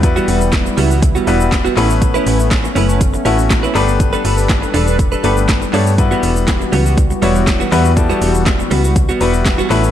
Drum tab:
HH |x-o-x-o-x-o-x-o-|x-o-x-o-x-o-x-o-|x-o-x-o-x-o-x-o-|x-o-x-o-x-o-x-o-|
SH |xxxxxxxxxxxxxxxx|xxxxxxxxxxxxxxxx|xxxxxxxxxxxxxxxx|xxxxxxxxxxxxxxxx|
CP |----x-------x-x-|----x-------x-x-|----x-------x-x-|----x-------x-x-|
SD |----o-------o---|----o-------o---|----o-------o---|----o-------o---|
BD |o---o---o---o---|o---o---o---o---|o---o---o---o---|o---o---o---o---|

HH |x-o-x-o-x-o-x-o-|
SH |xxxxxxxxxxxxxxxx|
CP |----x-------x-x-|
SD |----o-------o---|
BD |o---o---o---o---|